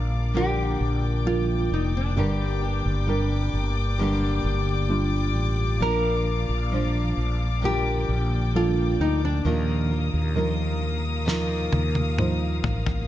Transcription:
Already playing: A#1 A#2 D3 F3 A#3 D4 A#4 D5 F5 D6
0.34 A#2 D3 F3 A#3 D4 G4 A#4 G5
0.38 A#4
0.81 A#1
1.25 F3 D4 F4 A#4
1.72 F1 D#4
1.97 D4
2.16 G1 G2 D3 G3 A#3 D4 G4 A#4
2.61 G3 A#3 D4 G4
2.86 G1
3.07 G3 A#3 D4 G4 A#4
3.13 C4
3.53 G1
3.98 G2 D3 G3 A#3 D4 G4
4.44 G1
4.89 G3 D4 F4
5.35 A1
5.79 A#1 A#2 D3 F3 A#3 D4 A#4 F5
6.49 A#1
6.72 F3 A#3 D4 A#4 C5
7.17 A#1
7.61 A#2 D3 F3 A#3 D4 G4 A#4 G5
7.66 A#4
8.09 A#1
8.54 F3 D4 F4 A4
9.00 D2 D#4
9.25 D4
9.44 D#2 A#2 D#3 F3 A#3 F4 A#4 F5 D#6
9.90 A#3 F4 A#4
10.14 D#2
10.35 D#3 F3 A#3 F4 A#4
11.25 D#3 F3 A#3 D#4 F4 A#4, snare
11.72 D#2, high tom
11.95 high tom
12.18 F3 D#4 C5, mid tom
12.63 A1, floor tom
12.86 floor tom

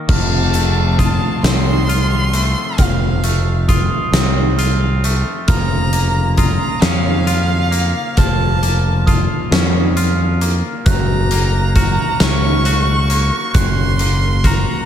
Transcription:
0.08 F1 F2 C3 F3 A3 A5 F6, kick, crash
0.54 A3, closed hi-hat
0.99 F4 A5 D#6, kick, closed hi-hat
1.43 C2 C4 C6, snare, closed hi-hat
1.88 F4 F6, closed hi-hat
2.33 A3, closed hi-hat
2.78 F1 F2 F5 F6, kick, closed hi-hat
3.24 A3, closed hi-hat
3.68 F4 D#6, kick, closed hi-hat
4.12 C2 C4, snare, closed hi-hat
4.58 F4 F6, closed hi-hat
5.04 A3, closed hi-hat
5.47 F1 C#3 F3 A#3 A#5 F6, kick, closed hi-hat
5.93 A#3, closed hi-hat
6.37 F4 A#5 D#6, kick, closed hi-hat
6.82 F2 C#4 F5, snare, closed hi-hat
7.27 F4 F6, closed hi-hat
7.71 A#3, closed hi-hat
8.17 F1 F3 A5 F6, kick, closed hi-hat
8.63 A#3, closed hi-hat
9.06 F4 D#6, kick, closed hi-hat
9.51 F2 C#4, snare, closed hi-hat
9.96 F4 F6, closed hi-hat
10.41 A#3, closed hi-hat
10.86 F#1 F#2 F#3 A#5 F#6, kick, closed hi-hat
11.31 A#3, closed hi-hat
11.75 F#4 F6, kick, closed hi-hat
11.80 A#5
12.20 C#2 C#4 C#6, snare, closed hi-hat
12.65 F#4 F#6, closed hi-hat
13.10 A#3, closed hi-hat
13.54 F#1 F#2 C6 F#6, kick, closed hi-hat
13.99 A#3, closed hi-hat
14.44 F#4 A#5 F6, kick, closed hi-hat

